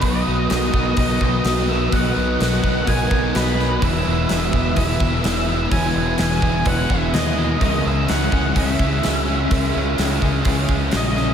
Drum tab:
HH |o-o-o-o-|o-o-o-o-|o-o-o-o-|o-o-o-o-|
SD |--o---o-|--o---oo|--o---o-|--o---o-|
BD |o--ooo--|o--ooo--|o--ooo--|o--ooo--|

HH |o-o-o-o-|o-o-o-o-|
SD |--o---o-|--o---oo|
BD |o--ooo--|o--ooo--|